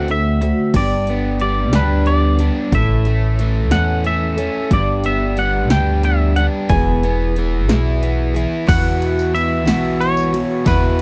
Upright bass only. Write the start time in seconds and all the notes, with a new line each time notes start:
Already playing: D2
0.74 G1
1.73 D2
2.72 A1
3.72 E2
4.71 G1
5.71 D2
6.70 E1
7.70 B1
8.68 E2
9.68 B1
10.67 E2